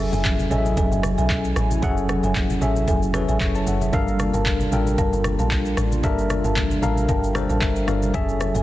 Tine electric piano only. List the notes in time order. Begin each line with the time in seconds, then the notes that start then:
Already playing: F#3 C#4 G#4 A4 E5
0.51 F#3 C#4 G#4 A4 D#5
0.58 E5
1.82 F#3 C#4 G#4 A4 F#5
2.61 F#3 C#4 G#4 A4 E5
3.14 F#3 C#4 G#4 A4 B4
3.41 E5 C#6
3.55 C#5 A5
3.67 A4 F#5
3.82 G#4 E5
3.93 G3 D4 A4 A#4 F5
4.72 G3 D4 A4 A#4 G5
6.03 G3 D4 A4 A#4 E5
6.82 G3 D4 A4 A#4 F5 A#5
7.09 G5
7.35 G3 D4 A4 A#4 C5
7.62 E5
7.87 G3 D4 A4 A#4 D5 F5
8.14 F#3 C#4 G#4 A4 E5